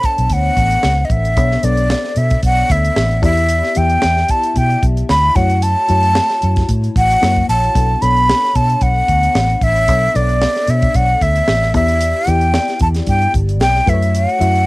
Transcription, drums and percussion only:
0.03 kick, closed hi-hat
0.18 closed hi-hat
0.30 kick, closed hi-hat
0.57 kick, closed hi-hat
0.71 closed hi-hat
0.83 snare
1.10 kick, closed hi-hat
1.25 closed hi-hat
1.37 kick, closed hi-hat
1.51 snare
1.63 closed hi-hat
1.77 closed hi-hat
1.90 snare
2.04 snare
2.16 closed hi-hat
2.30 kick, closed hi-hat
2.43 kick, closed hi-hat
2.70 kick, closed hi-hat
2.85 closed hi-hat
2.96 snare
3.11 closed hi-hat
3.23 kick, closed hi-hat
3.37 closed hi-hat
3.49 closed hi-hat
3.63 snare
3.75 closed hi-hat
3.90 closed hi-hat
4.02 snare
4.17 snare
4.28 kick, closed hi-hat
4.43 closed hi-hat
4.56 kick, closed hi-hat
4.70 closed hi-hat
4.83 kick, closed hi-hat
4.97 closed hi-hat
5.09 snare
5.24 closed hi-hat
5.36 kick, closed hi-hat
5.50 closed hi-hat
5.62 closed hi-hat
5.89 closed hi-hat
6.03 closed hi-hat
6.15 snare
6.29 snare, closed hi-hat
6.42 closed hi-hat
6.56 kick, snare, closed hi-hat
6.69 kick, closed hi-hat
6.84 closed hi-hat
6.96 kick, closed hi-hat
7.11 closed hi-hat
7.23 snare
7.37 kick
7.49 closed hi-hat
7.64 closed hi-hat
7.75 kick, closed hi-hat
8.02 closed hi-hat
8.17 closed hi-hat
8.30 snare
8.44 snare
8.55 kick, closed hi-hat
8.70 closed hi-hat
8.81 kick, closed hi-hat
9.08 kick, closed hi-hat
9.23 closed hi-hat
9.35 snare
9.50 closed hi-hat
9.61 kick, closed hi-hat
9.76 closed hi-hat
9.88 kick, closed hi-hat
10.15 closed hi-hat
10.29 closed hi-hat
10.42 snare
10.56 snare, closed hi-hat
10.67 closed hi-hat
10.82 kick, closed hi-hat
10.94 kick, closed hi-hat
11.21 kick, closed hi-hat
11.36 closed hi-hat
11.48 snare
11.62 snare
11.74 kick, closed hi-hat
11.88 closed hi-hat
12.01 closed hi-hat
12.27 closed hi-hat
12.41 closed hi-hat
12.54 snare
12.68 snare, closed hi-hat
12.79 kick, closed hi-hat
12.94 snare, closed hi-hat
13.07 kick, closed hi-hat
13.22 closed hi-hat
13.34 kick, closed hi-hat
13.49 closed hi-hat
13.61 snare
13.75 snare, closed hi-hat
13.87 kick, closed hi-hat
14.02 closed hi-hat
14.15 closed hi-hat
14.29 closed hi-hat
14.41 closed hi-hat
14.55 closed hi-hat

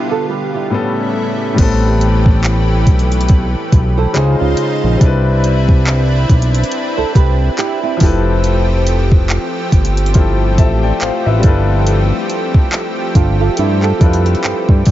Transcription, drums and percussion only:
1.58 kick, closed hi-hat, crash
2.01 closed hi-hat
2.26 kick
2.44 clap, closed hi-hat
2.87 kick, closed hi-hat
2.99 closed hi-hat
3.12 closed hi-hat
3.21 closed hi-hat
3.28 kick, closed hi-hat
3.72 kick, closed hi-hat
4.16 clap, closed hi-hat
4.57 closed hi-hat
5.01 kick, closed hi-hat
5.44 closed hi-hat
5.69 kick
5.87 clap, closed hi-hat
6.29 kick, closed hi-hat
6.42 closed hi-hat
6.54 closed hi-hat
6.64 closed hi-hat
6.72 closed hi-hat
7.15 kick, closed hi-hat
7.59 clap, closed hi-hat
8.00 kick, open hi-hat
8.44 closed hi-hat
8.87 closed hi-hat
9.12 kick
9.30 clap, closed hi-hat
9.72 kick, closed hi-hat
9.85 closed hi-hat
9.97 closed hi-hat
10.06 closed hi-hat
10.14 kick, closed hi-hat
10.58 kick, closed hi-hat
11.01 clap, closed hi-hat
11.43 kick, closed hi-hat
11.87 closed hi-hat
12.30 closed hi-hat
12.54 kick
12.72 clap, closed hi-hat
13.15 kick, closed hi-hat
13.57 closed hi-hat
13.83 clap
14.01 kick, closed hi-hat
14.13 closed hi-hat
14.26 closed hi-hat
14.35 closed hi-hat
14.44 clap, closed hi-hat
14.69 kick
14.86 kick, open hi-hat

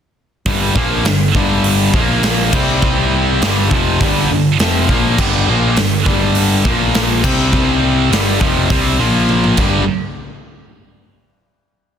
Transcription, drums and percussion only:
0.45 kick, open hi-hat
0.76 kick
1.05 snare, open hi-hat
1.35 kick
1.64 open hi-hat
1.94 kick
2.23 snare, open hi-hat
2.53 kick, crash
2.82 kick
3.42 snare, open hi-hat
3.71 kick
4.01 kick, open hi-hat
4.59 snare, open hi-hat
4.89 kick
5.18 kick, crash
5.76 snare, open hi-hat
6.06 kick
6.35 open hi-hat
6.65 kick
6.94 snare, open hi-hat
7.24 kick, crash
7.53 kick
8.12 snare, open hi-hat
8.41 kick
8.70 kick, open hi-hat
9.29 high tom
9.44 mid tom
9.57 kick, crash

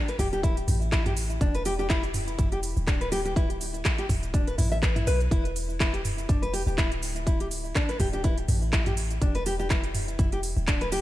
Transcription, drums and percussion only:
0.08 closed hi-hat, shaker
0.19 kick, mid tom, open hi-hat, shaker
0.33 closed hi-hat, shaker
0.43 kick, closed hi-hat, shaker
0.57 closed hi-hat, shaker
0.68 mid tom, open hi-hat, shaker
0.82 shaker
0.92 kick, cross-stick, clap, closed hi-hat, shaker
1.06 closed hi-hat, mid tom, shaker
1.17 open hi-hat, shaker
1.30 closed hi-hat, shaker
1.41 kick, closed hi-hat, shaker
1.55 closed hi-hat, shaker
1.65 open hi-hat, shaker
1.79 shaker
1.90 kick, cross-stick, clap, closed hi-hat, shaker
2.03 closed hi-hat, shaker
2.14 mid tom, open hi-hat, shaker
2.28 closed hi-hat, shaker
2.39 kick, closed hi-hat, mid tom, shaker
2.52 closed hi-hat, shaker
2.63 open hi-hat, shaker
2.77 shaker
2.87 kick, cross-stick, clap, closed hi-hat, shaker
3.01 closed hi-hat, shaker
3.12 open hi-hat, shaker
3.26 closed hi-hat, shaker
3.36 kick, closed hi-hat, shaker
3.50 closed hi-hat, shaker
3.61 open hi-hat, shaker
3.74 closed hi-hat, shaker
3.85 kick, cross-stick, clap, closed hi-hat, shaker
3.98 closed hi-hat, shaker
4.09 kick, mid tom, open hi-hat, shaker
4.23 closed hi-hat, shaker
4.34 kick, closed hi-hat, shaker
4.47 closed hi-hat, shaker
4.59 mid tom, open hi-hat, shaker
4.72 shaker
4.83 kick, cross-stick, clap, closed hi-hat, shaker
4.96 closed hi-hat, mid tom, shaker
5.07 open hi-hat, shaker
5.20 closed hi-hat, shaker
5.31 kick, closed hi-hat, shaker
5.45 closed hi-hat, shaker
5.56 open hi-hat, shaker
5.70 shaker
5.80 kick, cross-stick, clap, closed hi-hat, shaker
5.94 closed hi-hat, shaker
6.05 mid tom, open hi-hat, shaker
6.18 closed hi-hat, shaker
6.29 kick, closed hi-hat, mid tom, shaker
6.43 closed hi-hat, shaker
6.54 open hi-hat, shaker
6.67 shaker
6.78 kick, cross-stick, clap, closed hi-hat, shaker
6.92 closed hi-hat, shaker
7.03 open hi-hat, shaker
7.16 closed hi-hat, shaker
7.27 kick, closed hi-hat, shaker
7.40 closed hi-hat, shaker
7.51 open hi-hat, shaker
7.65 shaker
7.75 kick, cross-stick, clap, closed hi-hat, shaker
7.89 closed hi-hat, shaker
8.00 kick, mid tom, open hi-hat, shaker
8.13 closed hi-hat, shaker
8.24 kick, closed hi-hat, shaker
8.38 closed hi-hat, shaker
8.48 mid tom, open hi-hat, shaker
8.62 shaker
8.73 kick, cross-stick, clap, closed hi-hat, shaker
8.86 closed hi-hat, mid tom, shaker
8.97 open hi-hat, shaker
9.11 closed hi-hat, shaker
9.22 kick, closed hi-hat, shaker
9.35 closed hi-hat, shaker
9.46 open hi-hat, shaker
9.60 shaker
9.70 kick, cross-stick, clap, closed hi-hat, shaker
9.84 closed hi-hat, shaker
9.95 mid tom, open hi-hat, shaker
10.08 closed hi-hat, shaker
10.19 kick, closed hi-hat, mid tom, shaker
10.32 closed hi-hat, shaker
10.43 open hi-hat, shaker
10.57 shaker
10.68 kick, cross-stick, clap, closed hi-hat, shaker
10.81 closed hi-hat, shaker
10.92 open hi-hat, shaker

